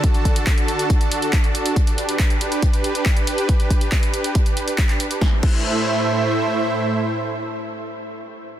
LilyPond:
<<
  \new Staff \with { instrumentName = "Supersaw synth" } { \time 4/4 \key a \dorian \tempo 4 = 139 << { <d fis' a' a''>1 | <g' b'>1~ | <g' b'>1 | <a, a e' c'' e''>1~ |
<a, a e' c'' e''>1 | } \\ { d'1~ | d'1~ | d'1 | r1 |
r1 | } >> }
  \new DrumStaff \with { instrumentName = "Drums" } \drummode { \time 4/4 <hh bd>16 hh16 <hh bd>16 hh16 <hc hh bd>16 hh16 hh16 hh16 <hh bd>16 hh16 hh16 hh16 <hc hh bd>16 hh16 hh16 hh16 | <hh bd>16 hh16 hh16 hh16 <hc hh bd>16 hh16 hh16 hh16 <hh bd>16 hh16 hh16 hh16 <hc hh bd>16 hh16 hh16 hh16 | <hh bd>16 hh16 <hh bd>16 hh16 <hc hh bd>16 hh16 hh16 hh16 <hh bd>16 hh16 hh16 hh16 <hc hh bd>16 <hc hh>16 hh16 hh16 | <bd sn>8 <cymc bd>8 r4 r4 r4 |
r4 r4 r4 r4 | }
>>